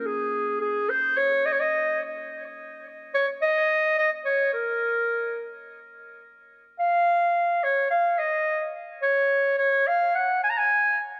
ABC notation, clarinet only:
X:1
M:4/4
L:1/16
Q:1/4=107
K:Db
V:1 name="Clarinet"
A4 A2 c2 d2 e/2 d/2 e3 z2 | z6 d2 e4 e2 d2 | B8 z8 | f6 d2 f2 e4 z2 |
d4 d2 f2 g2 a/2 b/2 a3 z2 |]